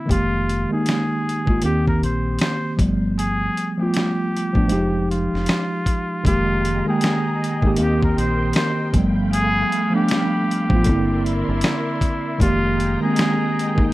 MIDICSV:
0, 0, Header, 1, 6, 480
1, 0, Start_track
1, 0, Tempo, 769231
1, 57, Time_signature, 4, 2, 24, 8
1, 8695, End_track
2, 0, Start_track
2, 0, Title_t, "String machine"
2, 0, Program_c, 0, 50
2, 3903, Note_on_c, 0, 56, 74
2, 3903, Note_on_c, 0, 75, 69
2, 3903, Note_on_c, 0, 79, 69
2, 3904, Note_on_c, 0, 82, 78
2, 4851, Note_off_c, 0, 56, 0
2, 4851, Note_off_c, 0, 82, 0
2, 4865, Note_on_c, 0, 70, 72
2, 4865, Note_on_c, 0, 84, 80
2, 5563, Note_off_c, 0, 75, 0
2, 5574, Note_off_c, 0, 70, 0
2, 5574, Note_off_c, 0, 84, 0
2, 5579, Note_on_c, 0, 77, 70
2, 5580, Note_on_c, 0, 57, 75
2, 5580, Note_on_c, 0, 83, 85
2, 6755, Note_off_c, 0, 79, 0
2, 6766, Note_off_c, 0, 77, 0
2, 6767, Note_off_c, 0, 57, 0
2, 6767, Note_off_c, 0, 83, 0
2, 6776, Note_on_c, 0, 84, 84
2, 6777, Note_on_c, 0, 76, 69
2, 6778, Note_on_c, 0, 70, 76
2, 6778, Note_on_c, 0, 74, 65
2, 7727, Note_off_c, 0, 84, 0
2, 7728, Note_off_c, 0, 70, 0
2, 7728, Note_off_c, 0, 74, 0
2, 7728, Note_off_c, 0, 76, 0
2, 7735, Note_on_c, 0, 56, 74
2, 7735, Note_on_c, 0, 82, 85
2, 7736, Note_on_c, 0, 79, 69
2, 7737, Note_on_c, 0, 75, 69
2, 8687, Note_off_c, 0, 56, 0
2, 8687, Note_off_c, 0, 82, 0
2, 8695, Note_off_c, 0, 75, 0
2, 8695, Note_off_c, 0, 79, 0
2, 8695, End_track
3, 0, Start_track
3, 0, Title_t, "Muted trumpet"
3, 0, Program_c, 1, 59
3, 0, Note_on_c, 1, 64, 71
3, 70, Note_on_c, 1, 65, 92
3, 79, Note_off_c, 1, 64, 0
3, 427, Note_off_c, 1, 65, 0
3, 454, Note_on_c, 1, 68, 83
3, 1029, Note_on_c, 1, 67, 88
3, 1038, Note_off_c, 1, 68, 0
3, 1155, Note_off_c, 1, 67, 0
3, 1174, Note_on_c, 1, 70, 77
3, 1254, Note_off_c, 1, 70, 0
3, 1272, Note_on_c, 1, 72, 73
3, 1482, Note_off_c, 1, 72, 0
3, 1509, Note_on_c, 1, 72, 79
3, 1720, Note_off_c, 1, 72, 0
3, 1989, Note_on_c, 1, 68, 97
3, 2346, Note_off_c, 1, 68, 0
3, 2378, Note_on_c, 1, 67, 77
3, 3160, Note_off_c, 1, 67, 0
3, 3189, Note_on_c, 1, 65, 77
3, 3878, Note_off_c, 1, 65, 0
3, 3910, Note_on_c, 1, 65, 93
3, 4267, Note_off_c, 1, 65, 0
3, 4295, Note_on_c, 1, 68, 83
3, 4838, Note_off_c, 1, 68, 0
3, 4871, Note_on_c, 1, 67, 87
3, 4996, Note_off_c, 1, 67, 0
3, 5016, Note_on_c, 1, 70, 74
3, 5095, Note_off_c, 1, 70, 0
3, 5109, Note_on_c, 1, 72, 80
3, 5320, Note_off_c, 1, 72, 0
3, 5346, Note_on_c, 1, 72, 79
3, 5558, Note_off_c, 1, 72, 0
3, 5824, Note_on_c, 1, 68, 111
3, 6184, Note_off_c, 1, 68, 0
3, 6212, Note_on_c, 1, 67, 83
3, 6997, Note_off_c, 1, 67, 0
3, 7025, Note_on_c, 1, 64, 79
3, 7716, Note_off_c, 1, 64, 0
3, 7745, Note_on_c, 1, 65, 101
3, 8104, Note_off_c, 1, 65, 0
3, 8129, Note_on_c, 1, 68, 87
3, 8676, Note_off_c, 1, 68, 0
3, 8695, End_track
4, 0, Start_track
4, 0, Title_t, "Tine electric piano"
4, 0, Program_c, 2, 4
4, 0, Control_c, 2, 64, 127
4, 0, Note_on_c, 2, 50, 80
4, 0, Note_on_c, 2, 58, 79
4, 0, Note_on_c, 2, 60, 82
4, 0, Note_on_c, 2, 64, 96
4, 37, Note_on_c, 2, 51, 78
4, 46, Note_on_c, 2, 56, 69
4, 55, Note_off_c, 2, 58, 0
4, 55, Note_on_c, 2, 58, 70
4, 65, Note_on_c, 2, 67, 83
4, 66, Note_off_c, 2, 60, 0
4, 66, Control_c, 2, 64, 0
4, 68, Note_off_c, 2, 50, 0
4, 72, Note_off_c, 2, 64, 0
4, 162, Control_c, 2, 64, 127
4, 295, Note_off_c, 2, 51, 0
4, 300, Note_off_c, 2, 56, 0
4, 304, Note_off_c, 2, 58, 0
4, 309, Note_off_c, 2, 67, 0
4, 432, Note_on_c, 2, 51, 62
4, 440, Note_on_c, 2, 56, 60
4, 452, Note_on_c, 2, 58, 67
4, 460, Note_on_c, 2, 63, 71
4, 747, Note_off_c, 2, 51, 0
4, 751, Note_off_c, 2, 56, 0
4, 757, Note_off_c, 2, 58, 0
4, 761, Note_off_c, 2, 63, 0
4, 908, Note_on_c, 2, 51, 70
4, 918, Note_on_c, 2, 56, 60
4, 926, Note_on_c, 2, 58, 68
4, 938, Note_on_c, 2, 65, 73
4, 1005, Note_off_c, 2, 51, 0
4, 1013, Note_on_c, 2, 51, 71
4, 1015, Note_off_c, 2, 56, 0
4, 1016, Note_off_c, 2, 58, 0
4, 1023, Note_on_c, 2, 58, 63
4, 1025, Note_off_c, 2, 65, 0
4, 1026, Control_c, 2, 64, 0
4, 1032, Note_on_c, 2, 60, 69
4, 1041, Note_on_c, 2, 67, 75
4, 1146, Control_c, 2, 64, 127
4, 1612, Note_off_c, 2, 51, 0
4, 1617, Note_off_c, 2, 58, 0
4, 1621, Note_off_c, 2, 60, 0
4, 1626, Note_off_c, 2, 67, 0
4, 1730, Note_on_c, 2, 53, 75
4, 1739, Note_on_c, 2, 57, 61
4, 1745, Control_c, 2, 64, 0
4, 1749, Note_on_c, 2, 59, 63
4, 1760, Note_on_c, 2, 55, 84
4, 1860, Control_c, 2, 64, 127
4, 2214, Note_off_c, 2, 53, 0
4, 2218, Note_off_c, 2, 57, 0
4, 2223, Note_off_c, 2, 59, 0
4, 2229, Note_off_c, 2, 55, 0
4, 2357, Note_on_c, 2, 53, 63
4, 2366, Note_on_c, 2, 57, 66
4, 2377, Note_on_c, 2, 59, 59
4, 2387, Note_on_c, 2, 65, 71
4, 2670, Note_off_c, 2, 53, 0
4, 2674, Note_off_c, 2, 57, 0
4, 2680, Note_off_c, 2, 59, 0
4, 2685, Note_off_c, 2, 65, 0
4, 2828, Note_on_c, 2, 53, 73
4, 2838, Note_on_c, 2, 57, 62
4, 2847, Note_on_c, 2, 59, 62
4, 2855, Note_on_c, 2, 62, 79
4, 2912, Note_off_c, 2, 53, 0
4, 2919, Note_on_c, 2, 53, 81
4, 2929, Note_on_c, 2, 56, 79
4, 2935, Note_off_c, 2, 57, 0
4, 2939, Note_off_c, 2, 59, 0
4, 2939, Note_on_c, 2, 63, 76
4, 2943, Note_off_c, 2, 62, 0
4, 2946, Control_c, 2, 64, 0
4, 2948, Note_on_c, 2, 67, 94
4, 3052, Control_c, 2, 64, 127
4, 3707, Note_off_c, 2, 53, 0
4, 3711, Note_off_c, 2, 56, 0
4, 3716, Note_off_c, 2, 63, 0
4, 3721, Note_off_c, 2, 67, 0
4, 3892, Note_on_c, 2, 51, 83
4, 3901, Note_on_c, 2, 56, 72
4, 3906, Control_c, 2, 64, 0
4, 3911, Note_on_c, 2, 58, 65
4, 3921, Note_on_c, 2, 67, 89
4, 4016, Control_c, 2, 64, 127
4, 4143, Note_off_c, 2, 51, 0
4, 4147, Note_off_c, 2, 56, 0
4, 4152, Note_off_c, 2, 58, 0
4, 4157, Note_off_c, 2, 67, 0
4, 4278, Note_on_c, 2, 51, 74
4, 4286, Note_on_c, 2, 56, 57
4, 4296, Note_on_c, 2, 58, 63
4, 4306, Note_on_c, 2, 79, 73
4, 4590, Note_off_c, 2, 51, 0
4, 4594, Note_off_c, 2, 56, 0
4, 4599, Note_off_c, 2, 58, 0
4, 4604, Note_off_c, 2, 79, 0
4, 4755, Note_on_c, 2, 51, 76
4, 4765, Note_on_c, 2, 56, 71
4, 4774, Note_on_c, 2, 58, 71
4, 4783, Note_on_c, 2, 67, 81
4, 4838, Note_off_c, 2, 51, 0
4, 4846, Note_on_c, 2, 51, 72
4, 4848, Note_off_c, 2, 58, 0
4, 4855, Note_on_c, 2, 58, 75
4, 4858, Note_off_c, 2, 56, 0
4, 4864, Note_on_c, 2, 60, 65
4, 4865, Control_c, 2, 64, 0
4, 4866, Note_off_c, 2, 67, 0
4, 4873, Note_on_c, 2, 67, 80
4, 4974, Control_c, 2, 64, 127
4, 5448, Note_off_c, 2, 51, 0
4, 5453, Note_off_c, 2, 58, 0
4, 5457, Note_off_c, 2, 60, 0
4, 5462, Note_off_c, 2, 67, 0
4, 5570, Note_on_c, 2, 53, 73
4, 5583, Note_on_c, 2, 57, 68
4, 5585, Control_c, 2, 64, 0
4, 5592, Note_on_c, 2, 59, 69
4, 5601, Note_on_c, 2, 55, 86
4, 5681, Control_c, 2, 64, 127
4, 6054, Note_off_c, 2, 53, 0
4, 6060, Note_off_c, 2, 57, 0
4, 6065, Note_off_c, 2, 59, 0
4, 6069, Note_off_c, 2, 55, 0
4, 6180, Note_on_c, 2, 53, 71
4, 6191, Note_on_c, 2, 57, 69
4, 6199, Note_on_c, 2, 59, 64
4, 6210, Note_on_c, 2, 62, 77
4, 6501, Note_off_c, 2, 53, 0
4, 6507, Note_off_c, 2, 57, 0
4, 6511, Note_off_c, 2, 59, 0
4, 6516, Note_off_c, 2, 62, 0
4, 6677, Note_on_c, 2, 53, 82
4, 6688, Note_on_c, 2, 57, 65
4, 6697, Note_on_c, 2, 59, 70
4, 6708, Note_on_c, 2, 65, 86
4, 6769, Note_on_c, 2, 50, 91
4, 6774, Note_off_c, 2, 53, 0
4, 6777, Note_on_c, 2, 58, 82
4, 6780, Note_off_c, 2, 57, 0
4, 6784, Note_off_c, 2, 59, 0
4, 6787, Control_c, 2, 64, 0
4, 6787, Note_on_c, 2, 60, 82
4, 6790, Note_off_c, 2, 65, 0
4, 6797, Note_on_c, 2, 64, 94
4, 6886, Control_c, 2, 64, 127
4, 7551, Note_off_c, 2, 50, 0
4, 7555, Note_off_c, 2, 58, 0
4, 7561, Note_off_c, 2, 60, 0
4, 7566, Note_off_c, 2, 64, 0
4, 7726, Note_on_c, 2, 51, 77
4, 7736, Note_on_c, 2, 56, 65
4, 7744, Control_c, 2, 64, 0
4, 7745, Note_on_c, 2, 58, 75
4, 7757, Note_on_c, 2, 67, 85
4, 7861, Control_c, 2, 64, 127
4, 7980, Note_off_c, 2, 51, 0
4, 7985, Note_off_c, 2, 56, 0
4, 7989, Note_off_c, 2, 58, 0
4, 7995, Note_off_c, 2, 67, 0
4, 8113, Note_on_c, 2, 51, 72
4, 8123, Note_on_c, 2, 56, 67
4, 8133, Note_on_c, 2, 58, 62
4, 8143, Note_on_c, 2, 60, 76
4, 8428, Note_off_c, 2, 51, 0
4, 8433, Note_off_c, 2, 56, 0
4, 8438, Note_off_c, 2, 58, 0
4, 8443, Note_off_c, 2, 60, 0
4, 8580, Note_on_c, 2, 51, 79
4, 8590, Note_on_c, 2, 56, 66
4, 8599, Note_on_c, 2, 58, 74
4, 8609, Note_on_c, 2, 63, 84
4, 8682, Note_off_c, 2, 51, 0
4, 8691, Note_off_c, 2, 56, 0
4, 8691, Note_off_c, 2, 58, 0
4, 8695, Note_off_c, 2, 63, 0
4, 8695, End_track
5, 0, Start_track
5, 0, Title_t, "Fingered electric bass"
5, 0, Program_c, 3, 33
5, 61, Note_on_c, 3, 29, 96
5, 405, Note_off_c, 3, 29, 0
5, 922, Note_on_c, 3, 32, 85
5, 1007, Note_off_c, 3, 32, 0
5, 1023, Note_on_c, 3, 39, 98
5, 1266, Note_on_c, 3, 34, 83
5, 1275, Note_off_c, 3, 39, 0
5, 1477, Note_off_c, 3, 34, 0
5, 1741, Note_on_c, 3, 31, 91
5, 2170, Note_off_c, 3, 31, 0
5, 2843, Note_on_c, 3, 33, 84
5, 2927, Note_off_c, 3, 33, 0
5, 2944, Note_on_c, 3, 29, 86
5, 3287, Note_off_c, 3, 29, 0
5, 3330, Note_on_c, 3, 29, 85
5, 3411, Note_off_c, 3, 29, 0
5, 3902, Note_on_c, 3, 29, 104
5, 4246, Note_off_c, 3, 29, 0
5, 4759, Note_on_c, 3, 32, 88
5, 4846, Note_off_c, 3, 32, 0
5, 4862, Note_on_c, 3, 39, 96
5, 5075, Note_off_c, 3, 39, 0
5, 5102, Note_on_c, 3, 34, 86
5, 5315, Note_off_c, 3, 34, 0
5, 5579, Note_on_c, 3, 31, 96
5, 6009, Note_off_c, 3, 31, 0
5, 6678, Note_on_c, 3, 33, 91
5, 6765, Note_off_c, 3, 33, 0
5, 6781, Note_on_c, 3, 31, 98
5, 7125, Note_off_c, 3, 31, 0
5, 7168, Note_on_c, 3, 31, 92
5, 7250, Note_off_c, 3, 31, 0
5, 7740, Note_on_c, 3, 29, 107
5, 8085, Note_off_c, 3, 29, 0
5, 8600, Note_on_c, 3, 32, 89
5, 8686, Note_off_c, 3, 32, 0
5, 8695, End_track
6, 0, Start_track
6, 0, Title_t, "Drums"
6, 58, Note_on_c, 9, 36, 94
6, 67, Note_on_c, 9, 42, 77
6, 120, Note_off_c, 9, 36, 0
6, 130, Note_off_c, 9, 42, 0
6, 309, Note_on_c, 9, 42, 63
6, 371, Note_off_c, 9, 42, 0
6, 536, Note_on_c, 9, 42, 77
6, 554, Note_on_c, 9, 38, 102
6, 598, Note_off_c, 9, 42, 0
6, 616, Note_off_c, 9, 38, 0
6, 805, Note_on_c, 9, 42, 60
6, 868, Note_off_c, 9, 42, 0
6, 919, Note_on_c, 9, 36, 90
6, 982, Note_off_c, 9, 36, 0
6, 1008, Note_on_c, 9, 42, 82
6, 1071, Note_off_c, 9, 42, 0
6, 1170, Note_on_c, 9, 36, 85
6, 1232, Note_off_c, 9, 36, 0
6, 1269, Note_on_c, 9, 42, 51
6, 1331, Note_off_c, 9, 42, 0
6, 1489, Note_on_c, 9, 42, 82
6, 1507, Note_on_c, 9, 38, 113
6, 1552, Note_off_c, 9, 42, 0
6, 1569, Note_off_c, 9, 38, 0
6, 1739, Note_on_c, 9, 36, 101
6, 1742, Note_on_c, 9, 42, 66
6, 1802, Note_off_c, 9, 36, 0
6, 1805, Note_off_c, 9, 42, 0
6, 1990, Note_on_c, 9, 42, 78
6, 2052, Note_off_c, 9, 42, 0
6, 2230, Note_on_c, 9, 42, 66
6, 2293, Note_off_c, 9, 42, 0
6, 2457, Note_on_c, 9, 42, 76
6, 2475, Note_on_c, 9, 38, 98
6, 2519, Note_off_c, 9, 42, 0
6, 2537, Note_off_c, 9, 38, 0
6, 2724, Note_on_c, 9, 42, 58
6, 2786, Note_off_c, 9, 42, 0
6, 2839, Note_on_c, 9, 36, 94
6, 2902, Note_off_c, 9, 36, 0
6, 2929, Note_on_c, 9, 42, 78
6, 2991, Note_off_c, 9, 42, 0
6, 3191, Note_on_c, 9, 42, 52
6, 3254, Note_off_c, 9, 42, 0
6, 3340, Note_on_c, 9, 38, 31
6, 3402, Note_off_c, 9, 38, 0
6, 3409, Note_on_c, 9, 42, 75
6, 3426, Note_on_c, 9, 38, 110
6, 3471, Note_off_c, 9, 42, 0
6, 3489, Note_off_c, 9, 38, 0
6, 3658, Note_on_c, 9, 36, 84
6, 3661, Note_on_c, 9, 42, 66
6, 3720, Note_off_c, 9, 36, 0
6, 3723, Note_off_c, 9, 42, 0
6, 3899, Note_on_c, 9, 36, 103
6, 3909, Note_on_c, 9, 42, 84
6, 3961, Note_off_c, 9, 36, 0
6, 3971, Note_off_c, 9, 42, 0
6, 4149, Note_on_c, 9, 42, 68
6, 4211, Note_off_c, 9, 42, 0
6, 4374, Note_on_c, 9, 42, 83
6, 4392, Note_on_c, 9, 38, 109
6, 4437, Note_off_c, 9, 42, 0
6, 4455, Note_off_c, 9, 38, 0
6, 4642, Note_on_c, 9, 42, 64
6, 4704, Note_off_c, 9, 42, 0
6, 4757, Note_on_c, 9, 36, 95
6, 4820, Note_off_c, 9, 36, 0
6, 4845, Note_on_c, 9, 42, 84
6, 4907, Note_off_c, 9, 42, 0
6, 5008, Note_on_c, 9, 36, 89
6, 5070, Note_off_c, 9, 36, 0
6, 5106, Note_on_c, 9, 42, 58
6, 5169, Note_off_c, 9, 42, 0
6, 5324, Note_on_c, 9, 42, 81
6, 5342, Note_on_c, 9, 38, 120
6, 5387, Note_off_c, 9, 42, 0
6, 5404, Note_off_c, 9, 38, 0
6, 5576, Note_on_c, 9, 36, 101
6, 5577, Note_on_c, 9, 42, 72
6, 5638, Note_off_c, 9, 36, 0
6, 5639, Note_off_c, 9, 42, 0
6, 5824, Note_on_c, 9, 42, 84
6, 5886, Note_off_c, 9, 42, 0
6, 6067, Note_on_c, 9, 42, 64
6, 6130, Note_off_c, 9, 42, 0
6, 6293, Note_on_c, 9, 42, 77
6, 6311, Note_on_c, 9, 38, 112
6, 6355, Note_off_c, 9, 42, 0
6, 6373, Note_off_c, 9, 38, 0
6, 6560, Note_on_c, 9, 42, 62
6, 6623, Note_off_c, 9, 42, 0
6, 6676, Note_on_c, 9, 36, 103
6, 6739, Note_off_c, 9, 36, 0
6, 6767, Note_on_c, 9, 42, 87
6, 6780, Note_on_c, 9, 36, 96
6, 6829, Note_off_c, 9, 42, 0
6, 6842, Note_off_c, 9, 36, 0
6, 7027, Note_on_c, 9, 42, 54
6, 7090, Note_off_c, 9, 42, 0
6, 7246, Note_on_c, 9, 42, 81
6, 7264, Note_on_c, 9, 38, 119
6, 7308, Note_off_c, 9, 42, 0
6, 7326, Note_off_c, 9, 38, 0
6, 7496, Note_on_c, 9, 36, 88
6, 7500, Note_on_c, 9, 42, 68
6, 7558, Note_off_c, 9, 36, 0
6, 7562, Note_off_c, 9, 42, 0
6, 7737, Note_on_c, 9, 36, 112
6, 7746, Note_on_c, 9, 42, 85
6, 7800, Note_off_c, 9, 36, 0
6, 7808, Note_off_c, 9, 42, 0
6, 7987, Note_on_c, 9, 42, 66
6, 8049, Note_off_c, 9, 42, 0
6, 8214, Note_on_c, 9, 42, 84
6, 8231, Note_on_c, 9, 38, 111
6, 8276, Note_off_c, 9, 42, 0
6, 8294, Note_off_c, 9, 38, 0
6, 8483, Note_on_c, 9, 42, 64
6, 8545, Note_off_c, 9, 42, 0
6, 8597, Note_on_c, 9, 36, 99
6, 8660, Note_off_c, 9, 36, 0
6, 8695, End_track
0, 0, End_of_file